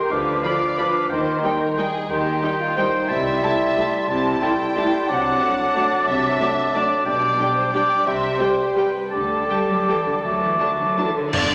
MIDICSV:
0, 0, Header, 1, 13, 480
1, 0, Start_track
1, 0, Tempo, 331309
1, 167, Time_signature, 3, 2, 24, 8
1, 12173, Tempo, 370599
1, 14093, Tempo, 354820
1, 16343, End_track
2, 0, Start_track
2, 0, Title_t, "Flute"
2, 0, Program_c, 0, 73
2, 0, Note_on_c, 0, 84, 51
2, 152, Note_on_c, 0, 86, 49
2, 174, Note_off_c, 0, 84, 0
2, 641, Note_off_c, 0, 86, 0
2, 662, Note_on_c, 0, 86, 53
2, 1145, Note_off_c, 0, 86, 0
2, 1155, Note_on_c, 0, 86, 51
2, 1610, Note_off_c, 0, 86, 0
2, 1624, Note_on_c, 0, 84, 53
2, 2649, Note_off_c, 0, 84, 0
2, 3060, Note_on_c, 0, 84, 54
2, 3966, Note_off_c, 0, 84, 0
2, 4013, Note_on_c, 0, 84, 59
2, 4461, Note_off_c, 0, 84, 0
2, 4470, Note_on_c, 0, 84, 55
2, 5887, Note_off_c, 0, 84, 0
2, 5936, Note_on_c, 0, 84, 58
2, 6396, Note_off_c, 0, 84, 0
2, 6408, Note_on_c, 0, 84, 56
2, 7365, Note_on_c, 0, 86, 63
2, 7387, Note_off_c, 0, 84, 0
2, 9764, Note_off_c, 0, 86, 0
2, 9772, Note_on_c, 0, 86, 61
2, 10232, Note_off_c, 0, 86, 0
2, 10251, Note_on_c, 0, 86, 54
2, 11197, Note_off_c, 0, 86, 0
2, 11205, Note_on_c, 0, 86, 55
2, 11697, Note_on_c, 0, 84, 52
2, 11718, Note_off_c, 0, 86, 0
2, 12159, Note_off_c, 0, 84, 0
2, 12167, Note_on_c, 0, 84, 47
2, 12769, Note_off_c, 0, 84, 0
2, 13099, Note_on_c, 0, 86, 49
2, 14518, Note_off_c, 0, 86, 0
2, 14588, Note_on_c, 0, 86, 48
2, 15787, Note_off_c, 0, 86, 0
2, 16343, End_track
3, 0, Start_track
3, 0, Title_t, "Violin section"
3, 0, Program_c, 1, 48
3, 647, Note_on_c, 1, 83, 45
3, 763, Note_off_c, 1, 83, 0
3, 1131, Note_on_c, 1, 83, 46
3, 1247, Note_off_c, 1, 83, 0
3, 2103, Note_on_c, 1, 79, 46
3, 2219, Note_off_c, 1, 79, 0
3, 2583, Note_on_c, 1, 79, 47
3, 2699, Note_off_c, 1, 79, 0
3, 3529, Note_on_c, 1, 79, 49
3, 3645, Note_off_c, 1, 79, 0
3, 4019, Note_on_c, 1, 79, 52
3, 4135, Note_off_c, 1, 79, 0
3, 4972, Note_on_c, 1, 81, 52
3, 5088, Note_off_c, 1, 81, 0
3, 5496, Note_on_c, 1, 81, 50
3, 5612, Note_off_c, 1, 81, 0
3, 6413, Note_on_c, 1, 81, 52
3, 6529, Note_off_c, 1, 81, 0
3, 6918, Note_on_c, 1, 81, 48
3, 7033, Note_off_c, 1, 81, 0
3, 7843, Note_on_c, 1, 81, 51
3, 7959, Note_off_c, 1, 81, 0
3, 8352, Note_on_c, 1, 81, 50
3, 8468, Note_off_c, 1, 81, 0
3, 9296, Note_on_c, 1, 81, 52
3, 9412, Note_off_c, 1, 81, 0
3, 9777, Note_on_c, 1, 81, 47
3, 9893, Note_off_c, 1, 81, 0
3, 10726, Note_on_c, 1, 79, 48
3, 10842, Note_off_c, 1, 79, 0
3, 11228, Note_on_c, 1, 79, 44
3, 11344, Note_off_c, 1, 79, 0
3, 12179, Note_on_c, 1, 79, 44
3, 12282, Note_off_c, 1, 79, 0
3, 12654, Note_on_c, 1, 79, 45
3, 12757, Note_off_c, 1, 79, 0
3, 13597, Note_on_c, 1, 79, 43
3, 13701, Note_off_c, 1, 79, 0
3, 14111, Note_on_c, 1, 79, 45
3, 14220, Note_off_c, 1, 79, 0
3, 15079, Note_on_c, 1, 81, 42
3, 15187, Note_off_c, 1, 81, 0
3, 15572, Note_on_c, 1, 81, 41
3, 15680, Note_off_c, 1, 81, 0
3, 16056, Note_on_c, 1, 74, 84
3, 16343, Note_off_c, 1, 74, 0
3, 16343, End_track
4, 0, Start_track
4, 0, Title_t, "Oboe"
4, 0, Program_c, 2, 68
4, 0, Note_on_c, 2, 79, 53
4, 164, Note_on_c, 2, 77, 52
4, 186, Note_off_c, 2, 79, 0
4, 632, Note_off_c, 2, 77, 0
4, 641, Note_on_c, 2, 77, 51
4, 1134, Note_off_c, 2, 77, 0
4, 1145, Note_on_c, 2, 77, 55
4, 1592, Note_on_c, 2, 79, 56
4, 1614, Note_off_c, 2, 77, 0
4, 2654, Note_off_c, 2, 79, 0
4, 3033, Note_on_c, 2, 79, 58
4, 3952, Note_off_c, 2, 79, 0
4, 4017, Note_on_c, 2, 79, 59
4, 4469, Note_on_c, 2, 81, 65
4, 4491, Note_off_c, 2, 79, 0
4, 5915, Note_off_c, 2, 81, 0
4, 5928, Note_on_c, 2, 81, 59
4, 6392, Note_off_c, 2, 81, 0
4, 6404, Note_on_c, 2, 81, 60
4, 7350, Note_off_c, 2, 81, 0
4, 7372, Note_on_c, 2, 81, 63
4, 9726, Note_off_c, 2, 81, 0
4, 9751, Note_on_c, 2, 81, 58
4, 10215, Note_off_c, 2, 81, 0
4, 10224, Note_on_c, 2, 79, 59
4, 11188, Note_off_c, 2, 79, 0
4, 11197, Note_on_c, 2, 79, 53
4, 11674, Note_off_c, 2, 79, 0
4, 11698, Note_on_c, 2, 79, 53
4, 12148, Note_off_c, 2, 79, 0
4, 12157, Note_on_c, 2, 79, 52
4, 12764, Note_off_c, 2, 79, 0
4, 13094, Note_on_c, 2, 81, 52
4, 14515, Note_off_c, 2, 81, 0
4, 14564, Note_on_c, 2, 81, 54
4, 15775, Note_off_c, 2, 81, 0
4, 16343, End_track
5, 0, Start_track
5, 0, Title_t, "Violin section"
5, 0, Program_c, 3, 48
5, 0, Note_on_c, 3, 70, 68
5, 164, Note_off_c, 3, 70, 0
5, 173, Note_on_c, 3, 71, 69
5, 644, Note_on_c, 3, 74, 76
5, 652, Note_off_c, 3, 71, 0
5, 1146, Note_off_c, 3, 74, 0
5, 1155, Note_on_c, 3, 71, 75
5, 1618, Note_on_c, 3, 72, 69
5, 1619, Note_off_c, 3, 71, 0
5, 2079, Note_off_c, 3, 72, 0
5, 2087, Note_on_c, 3, 70, 75
5, 2576, Note_on_c, 3, 68, 79
5, 2580, Note_off_c, 3, 70, 0
5, 3044, Note_off_c, 3, 68, 0
5, 3049, Note_on_c, 3, 67, 73
5, 3766, Note_on_c, 3, 65, 74
5, 3772, Note_off_c, 3, 67, 0
5, 4011, Note_on_c, 3, 72, 76
5, 4015, Note_off_c, 3, 65, 0
5, 4484, Note_off_c, 3, 72, 0
5, 4484, Note_on_c, 3, 76, 86
5, 5894, Note_off_c, 3, 76, 0
5, 5936, Note_on_c, 3, 81, 77
5, 6396, Note_off_c, 3, 81, 0
5, 6416, Note_on_c, 3, 79, 86
5, 7376, Note_off_c, 3, 79, 0
5, 7377, Note_on_c, 3, 78, 88
5, 8793, Note_on_c, 3, 76, 85
5, 8798, Note_off_c, 3, 78, 0
5, 9752, Note_off_c, 3, 76, 0
5, 9774, Note_on_c, 3, 74, 74
5, 10014, Note_off_c, 3, 74, 0
5, 10227, Note_on_c, 3, 74, 75
5, 10909, Note_off_c, 3, 74, 0
5, 10961, Note_on_c, 3, 72, 76
5, 11201, Note_on_c, 3, 74, 74
5, 11214, Note_off_c, 3, 72, 0
5, 11676, Note_off_c, 3, 74, 0
5, 11680, Note_on_c, 3, 76, 78
5, 12166, Note_on_c, 3, 72, 72
5, 12167, Note_off_c, 3, 76, 0
5, 12639, Note_off_c, 3, 72, 0
5, 12646, Note_on_c, 3, 71, 66
5, 13099, Note_on_c, 3, 69, 65
5, 13110, Note_off_c, 3, 71, 0
5, 15747, Note_off_c, 3, 69, 0
5, 16044, Note_on_c, 3, 62, 68
5, 16343, Note_off_c, 3, 62, 0
5, 16343, End_track
6, 0, Start_track
6, 0, Title_t, "Clarinet"
6, 0, Program_c, 4, 71
6, 0, Note_on_c, 4, 67, 52
6, 172, Note_on_c, 4, 62, 53
6, 194, Note_off_c, 4, 67, 0
6, 635, Note_off_c, 4, 62, 0
6, 644, Note_on_c, 4, 62, 50
6, 1136, Note_off_c, 4, 62, 0
6, 1164, Note_on_c, 4, 62, 52
6, 1620, Note_on_c, 4, 63, 54
6, 1641, Note_off_c, 4, 62, 0
6, 2668, Note_off_c, 4, 63, 0
6, 3038, Note_on_c, 4, 63, 55
6, 3955, Note_off_c, 4, 63, 0
6, 4026, Note_on_c, 4, 63, 55
6, 4494, Note_on_c, 4, 64, 60
6, 4516, Note_off_c, 4, 63, 0
6, 5928, Note_off_c, 4, 64, 0
6, 5948, Note_on_c, 4, 64, 57
6, 6402, Note_off_c, 4, 64, 0
6, 6418, Note_on_c, 4, 64, 58
6, 7376, Note_on_c, 4, 62, 64
6, 7398, Note_off_c, 4, 64, 0
6, 9755, Note_off_c, 4, 62, 0
6, 9764, Note_on_c, 4, 62, 56
6, 10217, Note_off_c, 4, 62, 0
6, 10225, Note_on_c, 4, 62, 55
6, 11189, Note_off_c, 4, 62, 0
6, 11212, Note_on_c, 4, 62, 57
6, 11693, Note_on_c, 4, 67, 52
6, 11715, Note_off_c, 4, 62, 0
6, 12170, Note_off_c, 4, 67, 0
6, 12178, Note_on_c, 4, 67, 52
6, 12774, Note_off_c, 4, 67, 0
6, 13105, Note_on_c, 4, 67, 51
6, 14591, Note_on_c, 4, 66, 49
6, 14612, Note_off_c, 4, 67, 0
6, 15813, Note_off_c, 4, 66, 0
6, 16343, End_track
7, 0, Start_track
7, 0, Title_t, "French horn section"
7, 0, Program_c, 5, 60
7, 632, Note_on_c, 5, 53, 45
7, 633, Note_on_c, 5, 65, 48
7, 816, Note_off_c, 5, 53, 0
7, 817, Note_off_c, 5, 65, 0
7, 1132, Note_on_c, 5, 53, 51
7, 1135, Note_on_c, 5, 65, 51
7, 1306, Note_off_c, 5, 53, 0
7, 1308, Note_off_c, 5, 65, 0
7, 2072, Note_on_c, 5, 63, 47
7, 2073, Note_on_c, 5, 55, 49
7, 2253, Note_off_c, 5, 63, 0
7, 2254, Note_off_c, 5, 55, 0
7, 2581, Note_on_c, 5, 55, 55
7, 2585, Note_on_c, 5, 63, 52
7, 2750, Note_off_c, 5, 55, 0
7, 2753, Note_off_c, 5, 63, 0
7, 3530, Note_on_c, 5, 63, 51
7, 3533, Note_on_c, 5, 55, 50
7, 3707, Note_off_c, 5, 63, 0
7, 3710, Note_off_c, 5, 55, 0
7, 4035, Note_on_c, 5, 55, 55
7, 4039, Note_on_c, 5, 63, 54
7, 4202, Note_off_c, 5, 55, 0
7, 4204, Note_off_c, 5, 63, 0
7, 4976, Note_on_c, 5, 57, 53
7, 4977, Note_on_c, 5, 64, 49
7, 5153, Note_off_c, 5, 57, 0
7, 5153, Note_off_c, 5, 64, 0
7, 5473, Note_on_c, 5, 64, 56
7, 5476, Note_on_c, 5, 57, 55
7, 5638, Note_off_c, 5, 64, 0
7, 5641, Note_off_c, 5, 57, 0
7, 6413, Note_on_c, 5, 57, 52
7, 6413, Note_on_c, 5, 64, 54
7, 6591, Note_off_c, 5, 57, 0
7, 6591, Note_off_c, 5, 64, 0
7, 6899, Note_on_c, 5, 57, 53
7, 6909, Note_on_c, 5, 64, 58
7, 7069, Note_off_c, 5, 57, 0
7, 7077, Note_off_c, 5, 64, 0
7, 7848, Note_on_c, 5, 62, 50
7, 7849, Note_on_c, 5, 57, 50
7, 8023, Note_off_c, 5, 62, 0
7, 8024, Note_off_c, 5, 57, 0
7, 8321, Note_on_c, 5, 57, 55
7, 8323, Note_on_c, 5, 62, 55
7, 8491, Note_off_c, 5, 57, 0
7, 8493, Note_off_c, 5, 62, 0
7, 9260, Note_on_c, 5, 57, 49
7, 9268, Note_on_c, 5, 62, 48
7, 9443, Note_off_c, 5, 57, 0
7, 9449, Note_off_c, 5, 62, 0
7, 9762, Note_on_c, 5, 62, 52
7, 9764, Note_on_c, 5, 57, 52
7, 9935, Note_off_c, 5, 62, 0
7, 9936, Note_off_c, 5, 57, 0
7, 10717, Note_on_c, 5, 62, 47
7, 10718, Note_on_c, 5, 55, 46
7, 10897, Note_off_c, 5, 62, 0
7, 10898, Note_off_c, 5, 55, 0
7, 11209, Note_on_c, 5, 62, 48
7, 11221, Note_on_c, 5, 55, 53
7, 11385, Note_off_c, 5, 62, 0
7, 11394, Note_off_c, 5, 55, 0
7, 12178, Note_on_c, 5, 67, 43
7, 12180, Note_on_c, 5, 55, 46
7, 12345, Note_off_c, 5, 67, 0
7, 12347, Note_off_c, 5, 55, 0
7, 12639, Note_on_c, 5, 67, 46
7, 12640, Note_on_c, 5, 55, 45
7, 12808, Note_off_c, 5, 67, 0
7, 12809, Note_off_c, 5, 55, 0
7, 13592, Note_on_c, 5, 55, 39
7, 13595, Note_on_c, 5, 69, 43
7, 13773, Note_off_c, 5, 55, 0
7, 13775, Note_off_c, 5, 69, 0
7, 14099, Note_on_c, 5, 69, 47
7, 14107, Note_on_c, 5, 55, 48
7, 14274, Note_off_c, 5, 69, 0
7, 14280, Note_off_c, 5, 55, 0
7, 15084, Note_on_c, 5, 69, 41
7, 15085, Note_on_c, 5, 54, 43
7, 15259, Note_off_c, 5, 69, 0
7, 15260, Note_off_c, 5, 54, 0
7, 15568, Note_on_c, 5, 54, 45
7, 15573, Note_on_c, 5, 69, 45
7, 15740, Note_off_c, 5, 54, 0
7, 15743, Note_off_c, 5, 69, 0
7, 16343, End_track
8, 0, Start_track
8, 0, Title_t, "Viola section"
8, 0, Program_c, 6, 48
8, 639, Note_on_c, 6, 65, 48
8, 642, Note_on_c, 6, 53, 51
8, 755, Note_off_c, 6, 65, 0
8, 758, Note_off_c, 6, 53, 0
8, 1137, Note_on_c, 6, 53, 50
8, 1140, Note_on_c, 6, 65, 47
8, 1253, Note_off_c, 6, 53, 0
8, 1256, Note_off_c, 6, 65, 0
8, 2082, Note_on_c, 6, 55, 53
8, 2083, Note_on_c, 6, 63, 50
8, 2198, Note_off_c, 6, 55, 0
8, 2199, Note_off_c, 6, 63, 0
8, 2583, Note_on_c, 6, 55, 51
8, 2585, Note_on_c, 6, 63, 51
8, 2699, Note_off_c, 6, 55, 0
8, 2700, Note_off_c, 6, 63, 0
8, 3526, Note_on_c, 6, 55, 49
8, 3529, Note_on_c, 6, 63, 52
8, 3641, Note_off_c, 6, 55, 0
8, 3645, Note_off_c, 6, 63, 0
8, 4018, Note_on_c, 6, 55, 50
8, 4022, Note_on_c, 6, 63, 49
8, 4134, Note_off_c, 6, 55, 0
8, 4138, Note_off_c, 6, 63, 0
8, 4964, Note_on_c, 6, 55, 54
8, 4964, Note_on_c, 6, 64, 51
8, 5080, Note_off_c, 6, 55, 0
8, 5080, Note_off_c, 6, 64, 0
8, 5459, Note_on_c, 6, 55, 49
8, 5468, Note_on_c, 6, 64, 51
8, 5575, Note_off_c, 6, 55, 0
8, 5584, Note_off_c, 6, 64, 0
8, 6394, Note_on_c, 6, 55, 54
8, 6397, Note_on_c, 6, 64, 55
8, 6510, Note_off_c, 6, 55, 0
8, 6513, Note_off_c, 6, 64, 0
8, 6900, Note_on_c, 6, 55, 51
8, 6902, Note_on_c, 6, 64, 52
8, 7016, Note_off_c, 6, 55, 0
8, 7018, Note_off_c, 6, 64, 0
8, 7834, Note_on_c, 6, 54, 53
8, 7841, Note_on_c, 6, 62, 50
8, 7950, Note_off_c, 6, 54, 0
8, 7957, Note_off_c, 6, 62, 0
8, 8337, Note_on_c, 6, 62, 50
8, 8341, Note_on_c, 6, 54, 49
8, 8453, Note_off_c, 6, 62, 0
8, 8457, Note_off_c, 6, 54, 0
8, 9268, Note_on_c, 6, 62, 53
8, 9274, Note_on_c, 6, 54, 54
8, 9384, Note_off_c, 6, 62, 0
8, 9390, Note_off_c, 6, 54, 0
8, 9781, Note_on_c, 6, 54, 49
8, 9781, Note_on_c, 6, 62, 47
8, 9896, Note_off_c, 6, 54, 0
8, 9897, Note_off_c, 6, 62, 0
8, 10715, Note_on_c, 6, 55, 52
8, 10717, Note_on_c, 6, 67, 52
8, 10831, Note_off_c, 6, 55, 0
8, 10833, Note_off_c, 6, 67, 0
8, 11214, Note_on_c, 6, 67, 47
8, 11215, Note_on_c, 6, 55, 46
8, 11330, Note_off_c, 6, 55, 0
8, 11330, Note_off_c, 6, 67, 0
8, 12160, Note_on_c, 6, 55, 46
8, 12165, Note_on_c, 6, 67, 49
8, 12265, Note_off_c, 6, 55, 0
8, 12269, Note_off_c, 6, 67, 0
8, 12636, Note_on_c, 6, 55, 47
8, 12637, Note_on_c, 6, 67, 44
8, 12739, Note_off_c, 6, 55, 0
8, 12740, Note_off_c, 6, 67, 0
8, 13597, Note_on_c, 6, 67, 45
8, 13598, Note_on_c, 6, 55, 45
8, 13701, Note_off_c, 6, 67, 0
8, 13702, Note_off_c, 6, 55, 0
8, 14095, Note_on_c, 6, 55, 45
8, 14098, Note_on_c, 6, 67, 41
8, 14203, Note_off_c, 6, 55, 0
8, 14206, Note_off_c, 6, 67, 0
8, 15061, Note_on_c, 6, 62, 46
8, 15066, Note_on_c, 6, 54, 45
8, 15169, Note_off_c, 6, 62, 0
8, 15174, Note_off_c, 6, 54, 0
8, 15570, Note_on_c, 6, 62, 41
8, 15573, Note_on_c, 6, 54, 43
8, 15678, Note_off_c, 6, 62, 0
8, 15682, Note_off_c, 6, 54, 0
8, 16343, End_track
9, 0, Start_track
9, 0, Title_t, "Bassoon"
9, 0, Program_c, 7, 70
9, 0, Note_on_c, 7, 51, 50
9, 172, Note_on_c, 7, 53, 54
9, 194, Note_off_c, 7, 51, 0
9, 640, Note_off_c, 7, 53, 0
9, 648, Note_on_c, 7, 53, 55
9, 1138, Note_off_c, 7, 53, 0
9, 1150, Note_on_c, 7, 53, 53
9, 1608, Note_off_c, 7, 53, 0
9, 1616, Note_on_c, 7, 51, 58
9, 2645, Note_off_c, 7, 51, 0
9, 3047, Note_on_c, 7, 51, 61
9, 3959, Note_off_c, 7, 51, 0
9, 4023, Note_on_c, 7, 51, 60
9, 4487, Note_on_c, 7, 55, 62
9, 4509, Note_off_c, 7, 51, 0
9, 5924, Note_off_c, 7, 55, 0
9, 5933, Note_on_c, 7, 55, 59
9, 6395, Note_off_c, 7, 55, 0
9, 6401, Note_on_c, 7, 55, 58
9, 7377, Note_on_c, 7, 54, 67
9, 7399, Note_off_c, 7, 55, 0
9, 9768, Note_off_c, 7, 54, 0
9, 9776, Note_on_c, 7, 54, 59
9, 10235, Note_on_c, 7, 55, 59
9, 10257, Note_off_c, 7, 54, 0
9, 11214, Note_off_c, 7, 55, 0
9, 11223, Note_on_c, 7, 55, 55
9, 11687, Note_off_c, 7, 55, 0
9, 11694, Note_on_c, 7, 55, 53
9, 12164, Note_off_c, 7, 55, 0
9, 12173, Note_on_c, 7, 55, 54
9, 12771, Note_off_c, 7, 55, 0
9, 13117, Note_on_c, 7, 55, 52
9, 14527, Note_off_c, 7, 55, 0
9, 14584, Note_on_c, 7, 57, 52
9, 15784, Note_off_c, 7, 57, 0
9, 16343, End_track
10, 0, Start_track
10, 0, Title_t, "Cello section"
10, 0, Program_c, 8, 48
10, 162, Note_on_c, 8, 50, 57
10, 562, Note_off_c, 8, 50, 0
10, 1607, Note_on_c, 8, 51, 61
10, 2000, Note_off_c, 8, 51, 0
10, 3039, Note_on_c, 8, 51, 61
10, 3434, Note_off_c, 8, 51, 0
10, 4481, Note_on_c, 8, 48, 66
10, 4874, Note_off_c, 8, 48, 0
10, 5923, Note_on_c, 8, 48, 67
10, 6316, Note_off_c, 8, 48, 0
10, 7370, Note_on_c, 8, 48, 61
10, 7757, Note_off_c, 8, 48, 0
10, 8794, Note_on_c, 8, 48, 66
10, 9186, Note_off_c, 8, 48, 0
10, 10234, Note_on_c, 8, 47, 64
10, 10629, Note_off_c, 8, 47, 0
10, 11681, Note_on_c, 8, 48, 60
10, 12082, Note_off_c, 8, 48, 0
10, 13101, Note_on_c, 8, 50, 54
10, 13502, Note_off_c, 8, 50, 0
10, 13575, Note_on_c, 8, 55, 61
10, 13817, Note_off_c, 8, 55, 0
10, 13832, Note_on_c, 8, 54, 57
10, 14083, Note_on_c, 8, 52, 56
10, 14087, Note_off_c, 8, 54, 0
10, 14184, Note_off_c, 8, 52, 0
10, 14330, Note_on_c, 8, 50, 56
10, 14426, Note_off_c, 8, 50, 0
10, 14570, Note_on_c, 8, 54, 63
10, 14804, Note_off_c, 8, 54, 0
10, 14807, Note_on_c, 8, 52, 60
10, 15060, Note_off_c, 8, 52, 0
10, 15060, Note_on_c, 8, 50, 52
10, 15309, Note_off_c, 8, 50, 0
10, 15320, Note_on_c, 8, 54, 54
10, 15558, Note_on_c, 8, 52, 58
10, 15564, Note_off_c, 8, 54, 0
10, 15804, Note_off_c, 8, 52, 0
10, 15816, Note_on_c, 8, 50, 51
10, 16035, Note_off_c, 8, 50, 0
10, 16052, Note_on_c, 8, 50, 71
10, 16343, Note_off_c, 8, 50, 0
10, 16343, End_track
11, 0, Start_track
11, 0, Title_t, "Timpani"
11, 0, Program_c, 10, 47
11, 16044, Note_on_c, 10, 43, 84
11, 16343, Note_off_c, 10, 43, 0
11, 16343, End_track
12, 0, Start_track
12, 0, Title_t, "Double bass section"
12, 0, Program_c, 11, 48
12, 160, Note_on_c, 11, 38, 58
12, 561, Note_off_c, 11, 38, 0
12, 1609, Note_on_c, 11, 39, 62
12, 2002, Note_off_c, 11, 39, 0
12, 3036, Note_on_c, 11, 39, 63
12, 3432, Note_off_c, 11, 39, 0
12, 4490, Note_on_c, 11, 36, 64
12, 4879, Note_off_c, 11, 36, 0
12, 5924, Note_on_c, 11, 36, 68
12, 6316, Note_off_c, 11, 36, 0
12, 7370, Note_on_c, 11, 36, 64
12, 7757, Note_off_c, 11, 36, 0
12, 8784, Note_on_c, 11, 36, 64
12, 9181, Note_off_c, 11, 36, 0
12, 10230, Note_on_c, 11, 35, 63
12, 10628, Note_off_c, 11, 35, 0
12, 11693, Note_on_c, 11, 36, 58
12, 12088, Note_off_c, 11, 36, 0
12, 13110, Note_on_c, 11, 38, 56
12, 13507, Note_off_c, 11, 38, 0
12, 14580, Note_on_c, 11, 38, 52
12, 14980, Note_off_c, 11, 38, 0
12, 16044, Note_on_c, 11, 31, 70
12, 16343, Note_off_c, 11, 31, 0
12, 16343, End_track
13, 0, Start_track
13, 0, Title_t, "Drums"
13, 16048, Note_on_c, 9, 35, 77
13, 16048, Note_on_c, 9, 49, 75
13, 16184, Note_off_c, 9, 35, 0
13, 16184, Note_off_c, 9, 49, 0
13, 16343, End_track
0, 0, End_of_file